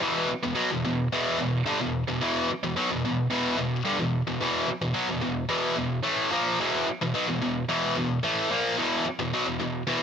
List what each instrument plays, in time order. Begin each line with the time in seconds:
0.01 distorted electric guitar E2 B2 E3
0.29 muted distorted electric guitar stroke
0.43 distorted electric guitar E2 B2
0.55 distorted electric guitar B2 F#3
0.71 distorted electric guitar E2 B2
0.85 distorted electric guitar E2 B2
1.13 distorted electric guitar E2 B2 E3
1.39 distorted electric guitar E2 B2
1.66 distorted electric guitar G2 D3
1.81 distorted electric guitar E2 B2
2.08 distorted electric guitar E2 B2
2.21 distorted electric guitar E2 B2 E3
2.49 muted distorted electric guitar stroke
2.64 distorted electric guitar E2 B2
2.76 distorted electric guitar B2 F#3
2.91 distorted electric guitar E2 B2
3.05 distorted electric guitar E2 B2
3.30 distorted electric guitar E2 B2 E3
3.58 distorted electric guitar E2 B2
3.85 distorted electric guitar G2 D3
3.99 distorted electric guitar E2 B2
4.27 distorted electric guitar E2 B2
4.41 distorted electric guitar E2 B2 E3
4.68 muted distorted electric guitar stroke
4.82 distorted electric guitar E2 B2
4.94 distorted electric guitar B2 F#3
5.09 distorted electric guitar E2 B2
5.21 distorted electric guitar E2 B2
5.49 distorted electric guitar E2 B2 E3
5.76 distorted electric guitar E2 B2
6.03 distorted electric guitar A2 E3 A3
6.32 distorted electric guitar A#2 F3 A#3
6.60 distorted electric guitar E2 B2 E3
6.87 muted distorted electric guitar stroke
7.01 distorted electric guitar E2 B2
7.14 distorted electric guitar B2 F#3
7.28 distorted electric guitar E2 B2
7.42 distorted electric guitar E2 B2
7.69 distorted electric guitar E2 B2 E3
7.96 distorted electric guitar E2 B2
8.23 distorted electric guitar A2 E3 A3
8.51 distorted electric guitar A#2 F3 A#3
8.78 distorted electric guitar E2 B2 E3
9.05 muted distorted electric guitar stroke
9.19 distorted electric guitar E2 B2
9.33 distorted electric guitar B2 F#3
9.46 distorted electric guitar E2 B2
9.60 distorted electric guitar E2 B2
9.87 distorted electric guitar E2 B2 E3